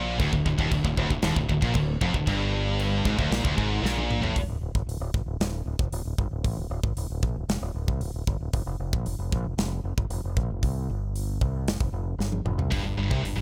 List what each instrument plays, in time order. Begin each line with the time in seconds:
Already playing: fingered electric bass A#1, distorted electric guitar A#2
0.19 fingered electric bass D1, distorted electric guitar D2, kick, china
0.32 fingered electric bass D1, distorted electric guitar D2, kick
0.45 fingered electric bass D1, distorted electric guitar D2, kick
0.59 fingered electric bass D#1, distorted electric guitar D#2, kick
0.71 fingered electric bass D1, distorted electric guitar D2, kick, china
0.84 fingered electric bass D1, distorted electric guitar D2, kick
0.97 fingered electric bass D1, distorted electric guitar D2, kick
1.10 fingered electric bass D1, distorted electric guitar D2, kick
1.22 fingered electric bass D#1, distorted electric guitar D#2, snare, china
1.36 fingered electric bass D1, distorted electric guitar D2, kick
1.49 fingered electric bass D1, distorted electric guitar D2, kick
1.62 fingered electric bass A#1, distorted electric guitar A#2, kick
1.74 fingered electric bass D1, distorted electric guitar D2, kick, china
2.01 fingered electric bass F1, distorted electric guitar F2, kick
2.14 fingered electric bass D1, distorted electric guitar D2, kick
2.27 fingered electric bass G1, distorted electric guitar G2, kick, china
2.79 china
3.05 fingered electric bass G#1, distorted electric guitar G#2, kick
3.19 fingered electric bass D1, distorted electric guitar D2, kick
3.31 fingered electric bass A#1, distorted electric guitar A#2, snare, china
3.44 fingered electric bass D1, distorted electric guitar D2, kick
3.57 fingered electric bass G#1, distorted electric guitar G#2, kick
3.82 fingered electric bass A#1, distorted electric guitar A#2, snare
3.98 high tom
4.11 mid tom
4.21 fingered electric bass A1, distorted electric guitar A2, floor tom
4.36 fingered electric bass D1, kick, open hi-hat
4.48 fingered electric bass D1
4.61 fingered electric bass D1
4.75 fingered electric bass G1, kick
4.87 fingered electric bass D1, open hi-hat
5.00 fingered electric bass D1
5.14 fingered electric bass G#1, kick
5.26 fingered electric bass D1
5.40 fingered electric bass D1, snare, open hi-hat
5.66 fingered electric bass D1
5.79 fingered electric bass F1, kick
5.92 fingered electric bass D1, open hi-hat
6.05 fingered electric bass D1
6.18 fingered electric bass G1, kick
6.31 fingered electric bass D1
6.45 fingered electric bass A1, kick, open hi-hat
6.57 fingered electric bass D1
6.70 fingered electric bass D1
6.83 fingered electric bass G#1, kick
6.97 fingered electric bass D1, open hi-hat
7.10 fingered electric bass D1
7.23 fingered electric bass A#1, kick
7.36 fingered electric bass D1
7.49 fingered electric bass F1, snare, open hi-hat
7.62 fingered electric bass D1
7.74 fingered electric bass D1
7.88 fingered electric bass C2, kick
8.01 fingered electric bass D1, open hi-hat
8.14 fingered electric bass D1
8.27 fingered electric bass G1, kick
8.40 fingered electric bass D1
8.53 fingered electric bass F1, kick, open hi-hat
8.66 fingered electric bass F1
8.80 fingered electric bass F1
8.93 fingered electric bass A#1, kick
9.06 fingered electric bass F1, open hi-hat
9.19 fingered electric bass F1
9.32 fingered electric bass A#1, kick
9.45 fingered electric bass F1
9.58 fingered electric bass F1, snare, open hi-hat
9.84 fingered electric bass F1
9.97 fingered electric bass G1, kick
10.10 fingered electric bass F1, open hi-hat
10.24 fingered electric bass F1
10.37 fingered electric bass A#1, kick
10.50 fingered electric bass F1
10.63 fingered electric bass C2, kick, open hi-hat
10.90 fingered electric bass G1
11.16 open hi-hat
11.41 fingered electric bass C2, kick
11.68 fingered electric bass F1, snare, open hi-hat
11.80 fingered electric bass F1, kick
11.93 fingered electric bass F1
12.18 fingered electric bass G1, snare
12.32 high tom
12.45 fingered electric bass F1, mid tom
12.58 fingered electric bass C2, floor tom
12.72 fingered electric bass G1, distorted electric guitar G2, kick, open hi-hat
12.84 fingered electric bass G1, distorted electric guitar G2
12.98 fingered electric bass G1, distorted electric guitar G2
13.10 fingered electric bass C2, distorted electric guitar C3, kick
13.23 fingered electric bass G1, distorted electric guitar G2, open hi-hat
13.36 fingered electric bass G1, distorted electric guitar G2